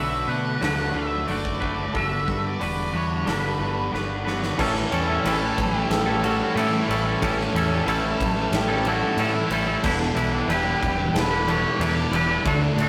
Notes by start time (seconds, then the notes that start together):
Already playing: B1 D3 F#3 A3 D4 F#4 A4 B4 E5 F#5 B5 D6
0.00 D4
0.27 B2 A3 D4 F#4 B4 F#5
0.61 D2 D3 F#3 A3 D4 F#4 A4 B4 F#5, snare, open hi-hat
0.65 D4
0.92 D2 D4 F#4 A4 B4 E5
0.97 A3 D4
1.27 F#1 D3 A3 D4 F#4 B4 D5, open hi-hat
1.31 D4
1.45 kick
1.60 A3 D4 F#4 B4, kick
1.93 G1 G2 D3 G3 B3 D4 F#4 A4 B4 E5, kick, open hi-hat
2.26 G2 D3 G3 D4 F#4 B4, kick, snare
2.47 D5
2.60 E1 G2 D3 B3 D4 F#4 B4, open hi-hat
2.64 G3
2.93 E2 D3 G3 D4 F#4 B4 C#5
3.25 G1 G2 D3 G3 B3 D4 F#4 A4 B4, snare, open hi-hat
3.59 G1 G3 D4 F#4 A4 B4
3.63 D3
3.91 G1 G2 D3 G3 B3 D4 F#4 B4, snare
4.24 D3 G3 D4 F#4 B4, snare
4.43 snare
4.57 A1 A2 E3 G3 A3 C#4 E4 A4 E5 A5 C#6, kick, crash
4.75 muted clean electric guitar stroke, snare
4.90 E2 G3 C#4 E4 A4, ride
5.07 E3 G3 A3 C#4 E4 A4
5.24 A1 A2 E3 G3 A3 C#4 E4 A4 B4, ride
5.42 E3 A3
5.58 A1, muted distorted electric guitar stroke, kick, ride
5.73 E3 A3
5.78 G4
5.90 A1 G4 A4, snare, ride
6.05 E3 G3 A3 C#4 E4 A4
6.22 A2 E3 G3 A3 C#4 E4 F#4 A4, ride
6.55 A2 E3 G3 C#4 E4 A4, ride
6.59 A3
6.71 E3 A3, muted clean electric guitar stroke
6.87 A1 A2 E3 G3 A3 C#4 E4 A4 B4, ride
7.05 E3 G3 A3 C#4 E4 A4
7.21 A1 A2 E3 G3 C#4 E4 A4, kick, ride
7.25 A3
7.38 muted clean electric guitar stroke, snare
7.54 E2 G3 C#4 E4 A4, ride
7.70 E3 G3 A3 C#4 E4 A4
7.86 A1 A2 E3 G3 C#4 E4 A4 B4, ride
7.90 A3
8.02 E3 A3
8.20 A1, muted distorted electric guitar stroke, kick, ride
8.37 E3 A3
8.52 A1 G4 A4, snare, ride
8.68 G3 A3 C#4 E4 A4
8.72 E3
8.85 A2 E3 G3 A3 C#4 E4 F#4 A4, ride
8.89 A4
9.17 A2 E3 G3 C#4 E4 A4, ride
9.21 A3 E4
9.35 E3 A3, muted clean electric guitar stroke
9.50 A1 A2 E3 G3 C#4 E4 B4, ride
9.54 A3 A4
9.66 E3 G3 A3 C#4 E4 A4
9.82 E1 E2 B2 E3 G3 B3 D4 E4 A4 B4 B5, kick, crash
10.00 muted clean electric guitar stroke, snare
10.15 B1 G3 D4 E4 B4, ride
10.31 E3 D4 E4 B4
10.36 B2
10.48 E1 E2 B2 E3 G3 D4 E4 B4, ride
10.53 E3 G4
10.65 B2 E3
10.82 E1, muted distorted electric guitar stroke, kick, ride
10.98 B2 E3
11.13 E1 A4, snare, ride
11.19 B4
11.31 B2 E3 D4 E4 B4
11.46 E2 B2 E3 G3 B3 D4 E4 A4, ride
11.51 B4 C#5
11.79 E2 B2 E3 G3 B3 D4 E4 B4 D5, ride
11.95 E3, muted clean electric guitar stroke
11.99 B2
12.11 E1 E2 B2 G3 D4 E4 B4, ride
12.15 E3 B4
12.28 B2 E3 D4 E4 B4
12.44 D2 D3 A3 D4 F#4 A4 F#5 C#6 D6, kick, ride
12.62 muted clean electric guitar stroke
12.76 A2 A3, ride
12.81 F#4 A4